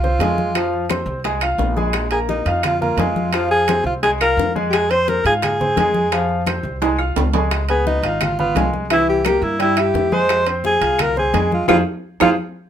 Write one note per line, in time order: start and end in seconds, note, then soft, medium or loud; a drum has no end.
0.00 0.16 C2 medium
0.00 0.17 C4 medium
0.00 0.87 F4 medium
0.00 0.18 C5 medium
0.00 0.18 C6 medium
0.00 high conga soft
0.00 low conga medium
0.04 high bongo soft
0.19 1.01 F2 medium
0.19 0.49 G#3 medium
0.19 0.50 G#4 medium
0.19 0.50 G#5 medium
0.19 high bongo soft
0.19 low bongo medium
0.19 high conga medium
0.19 high timbale medium
0.19 low timbale medium
0.38 high bongo soft
0.38 high conga medium
0.55 0.84 F3 medium
0.55 0.84 F4 medium
0.55 0.84 F5 medium
0.55 high bongo medium
0.55 high conga soft
0.55 high timbale medium
0.55 claves medium
0.73 high conga soft
0.90 1.19 C4 medium
0.90 1.19 C5 medium
0.90 1.19 C6 medium
0.90 high bongo medium
0.90 high conga medium
0.90 high timbale medium
0.90 claves medium
1.06 1.55 C2 medium
1.06 high bongo soft
1.06 high conga soft
1.24 1.39 G#3 medium
1.24 1.39 G#4 medium
1.24 1.39 G#5 medium
1.24 high bongo medium
1.24 high conga soft
1.24 high timbale medium
1.41 1.71 F4 medium
1.41 1.71 F5 medium
1.41 1.71 F6 medium
1.41 high bongo soft
1.41 high conga soft
1.41 high timbale medium
1.41 claves medium
1.58 2.40 A#1 medium
1.58 high bongo soft
1.58 low bongo medium
1.58 high conga soft
1.58 low timbale medium
1.77 2.05 G#3 medium
1.77 2.05 G#4 medium
1.77 2.06 G#5 medium
1.77 high bongo soft
1.77 high conga medium
1.93 high bongo medium
1.93 high conga soft
1.93 high timbale medium
1.93 claves medium
2.11 2.40 A#3 medium
2.11 2.19 G#4 medium
2.11 2.40 A#4 medium
2.11 2.41 A#5 medium
2.11 high conga soft
2.11 high timbale medium
2.29 2.62 D#4 medium
2.29 high bongo medium
2.29 high conga medium
2.45 2.94 F2 medium
2.45 2.75 F4 medium
2.45 2.75 F5 medium
2.45 2.76 F6 medium
2.45 high bongo soft
2.45 high conga soft
2.45 high timbale medium
2.63 2.80 F4 medium
2.63 high bongo medium
2.63 high conga soft
2.63 low conga medium
2.63 high timbale medium
2.63 claves medium
2.81 2.95 A#3 medium
2.81 3.30 F4 medium
2.81 2.96 A#4 medium
2.81 2.96 A#5 medium
2.81 high bongo soft
2.81 high conga soft
2.81 low conga medium
2.97 3.79 F2 medium
2.97 3.27 G#3 medium
2.97 3.27 G#4 medium
2.97 3.28 G#5 medium
2.97 high bongo soft
2.97 low bongo medium
2.97 high conga medium
2.97 high timbale medium
2.97 low timbale medium
3.16 high bongo soft
3.16 high conga medium
3.33 3.62 F3 medium
3.33 3.62 F4 medium
3.33 3.50 F4 medium
3.33 3.62 F5 medium
3.33 high bongo medium
3.33 high timbale medium
3.33 claves medium
3.51 3.83 G#4 medium
3.51 high conga soft
3.68 3.97 C4 medium
3.68 3.97 C5 medium
3.68 3.97 C6 medium
3.68 high bongo medium
3.68 high conga medium
3.68 high timbale medium
3.68 claves medium
3.84 4.33 C2 medium
3.84 3.94 F4 medium
3.84 high bongo soft
3.84 high conga soft
4.03 4.17 G#3 medium
4.03 4.11 G#4 loud
4.03 4.17 G#4 medium
4.03 4.18 G#5 medium
4.03 high bongo medium
4.03 high conga soft
4.03 high timbale medium
4.21 4.49 F4 medium
4.21 4.53 A#4 medium
4.21 4.50 F5 medium
4.21 4.50 F6 medium
4.21 high bongo soft
4.21 high conga soft
4.21 high timbale medium
4.21 claves medium
4.37 5.19 F2 medium
4.37 high bongo soft
4.37 low bongo medium
4.37 high conga soft
4.55 4.84 G#3 medium
4.55 4.84 G#4 medium
4.55 4.84 G#5 medium
4.55 high bongo soft
4.55 high conga medium
4.70 4.75 G4 medium
4.70 4.92 G#4 loud
4.70 high bongo medium
4.70 high conga soft
4.70 high timbale medium
4.70 claves medium
4.91 5.19 C4 medium
4.91 5.10 C5 loud
4.91 5.19 C5 medium
4.91 5.19 C6 medium
4.91 high conga soft
4.91 high timbale medium
5.08 5.25 A#4 medium
5.08 high bongo medium
5.08 high conga medium
5.25 5.73 G#2 medium
5.25 5.54 F4 medium
5.25 5.34 G#4 medium
5.25 5.54 F5 medium
5.25 5.54 F6 medium
5.25 high bongo soft
5.25 high conga soft
5.25 high timbale medium
5.42 6.43 G#4 medium
5.42 high bongo medium
5.42 high conga soft
5.42 low conga medium
5.42 high timbale medium
5.42 claves medium
5.60 5.75 C4 medium
5.60 5.75 C5 medium
5.60 5.75 C6 medium
5.60 high bongo soft
5.60 high conga soft
5.60 low conga medium
5.76 6.58 F2 medium
5.76 6.06 G#3 medium
5.76 6.06 G#4 medium
5.76 6.07 G#5 medium
5.76 high bongo soft
5.76 low bongo medium
5.76 high conga medium
5.76 high timbale medium
5.94 high bongo soft
5.94 high conga medium
6.12 6.41 F3 medium
6.12 6.41 F4 medium
6.12 6.41 F5 medium
6.12 high bongo medium
6.12 high timbale medium
6.12 claves medium
6.29 high conga soft
6.47 6.75 C4 medium
6.47 6.75 C5 medium
6.47 6.75 C6 medium
6.47 high bongo medium
6.47 high conga medium
6.47 high timbale medium
6.47 claves medium
6.63 7.12 C2 medium
6.63 high bongo soft
6.63 high conga soft
6.82 6.96 G#3 medium
6.82 6.96 G#4 medium
6.82 6.96 G#5 medium
6.82 high bongo medium
6.82 high conga soft
6.82 high timbale medium
6.99 7.27 F4 medium
6.99 7.27 F5 medium
6.99 7.28 F6 medium
6.99 high bongo soft
6.99 high conga soft
6.99 claves medium
7.16 7.97 C#2 medium
7.16 high bongo soft
7.16 low bongo medium
7.16 high conga soft
7.16 low timbale medium
7.33 7.62 G#3 medium
7.33 7.63 G#4 medium
7.33 7.63 G#5 medium
7.33 high bongo soft
7.33 high conga medium
7.33 low timbale loud
7.51 high bongo medium
7.51 high timbale medium
7.51 claves medium
7.69 7.97 B3 medium
7.69 7.86 G#4 medium
7.69 7.98 B4 medium
7.69 7.98 B5 medium
7.69 high conga soft
7.69 high timbale medium
7.87 8.25 D#4 medium
7.87 high bongo medium
7.87 high conga medium
8.03 8.51 G#1 medium
8.03 8.33 F4 medium
8.03 8.33 F5 medium
8.03 8.33 F6 medium
8.03 high bongo soft
8.03 high conga soft
8.03 high timbale medium
8.21 8.39 F4 medium
8.21 high bongo medium
8.21 high conga soft
8.21 low conga medium
8.21 high timbale medium
8.21 claves medium
8.39 8.53 B3 medium
8.39 8.71 F4 medium
8.39 8.53 B4 medium
8.39 8.53 B5 medium
8.39 high bongo soft
8.39 high conga soft
8.39 low conga medium
8.55 9.37 C2 medium
8.55 8.84 G#3 medium
8.55 8.85 G#4 medium
8.55 8.85 G#5 medium
8.55 high bongo soft
8.55 low bongo medium
8.55 high conga medium
8.55 high timbale medium
8.55 low timbale medium
8.73 high bongo soft
8.73 high conga medium
8.90 9.19 E3 medium
8.90 9.19 E4 medium
8.90 9.08 E4 medium
8.90 9.19 E5 medium
8.90 high bongo medium
8.90 high conga soft
8.90 high timbale medium
8.90 claves medium
9.08 9.25 G4 medium
9.08 high conga soft
9.25 9.54 A#3 medium
9.25 9.45 G4 medium
9.25 9.54 A#4 medium
9.25 9.54 A#5 medium
9.25 high bongo medium
9.25 high conga medium
9.25 high timbale medium
9.25 claves medium
9.42 9.91 G2 medium
9.42 9.60 E4 medium
9.42 high bongo soft
9.42 high conga soft
9.59 9.74 G3 medium
9.59 9.81 E4 medium
9.59 9.74 G4 medium
9.59 9.74 G5 medium
9.59 high bongo medium
9.59 high conga soft
9.59 high timbale medium
9.77 10.06 E4 medium
9.77 10.15 G4 medium
9.77 10.06 E5 medium
9.77 10.06 E6 medium
9.77 high bongo soft
9.77 high conga soft
9.77 high timbale medium
9.77 claves medium
9.94 10.76 F2 medium
9.94 high bongo soft
9.94 low bongo medium
9.94 high conga soft
10.12 10.41 G#3 medium
10.12 10.41 G#4 medium
10.12 10.47 C5 loud
10.12 10.41 G#5 medium
10.12 high bongo soft
10.12 high conga medium
10.29 high bongo medium
10.29 high timbale medium
10.29 claves medium
10.46 10.75 C4 medium
10.46 10.75 C5 medium
10.46 10.75 C6 medium
10.46 high conga soft
10.46 high timbale medium
10.64 11.03 G#4 loud
10.64 high bongo medium
10.64 high conga medium
10.81 11.30 C2 medium
10.81 11.10 F4 medium
10.81 11.10 F5 medium
10.81 11.10 F6 medium
10.81 high bongo soft
10.81 high conga soft
10.81 high timbale medium
10.99 11.18 A#4 loud
10.99 high bongo medium
10.99 high conga soft
10.99 low conga medium
10.99 high timbale medium
10.99 claves medium
11.16 11.31 C4 medium
11.16 11.50 G#4 medium
11.16 11.31 C5 medium
11.16 11.31 C6 medium
11.16 high bongo soft
11.16 high conga soft
11.16 low conga medium
11.34 11.66 F2 medium
11.34 11.62 G#3 medium
11.34 11.62 G#4 medium
11.34 11.63 G#5 medium
11.34 high bongo soft
11.34 low bongo medium
11.34 high conga medium
11.34 high timbale medium
11.34 low timbale medium
11.52 11.68 F4 medium
11.52 high bongo soft
11.52 high conga medium
11.68 11.81 F2 loud
11.68 11.79 F4 medium
11.68 11.77 F4 medium
11.68 11.79 G#4 medium
11.68 11.79 C5 medium
11.68 high bongo loud
11.68 high conga medium
11.68 high timbale medium
11.68 claves medium
12.20 12.34 F2 medium
12.20 12.32 F4 medium
12.20 12.30 F4 medium
12.20 12.32 G#4 loud
12.20 12.32 C5 medium
12.20 high bongo medium
12.20 high conga loud
12.20 high timbale loud
12.20 claves medium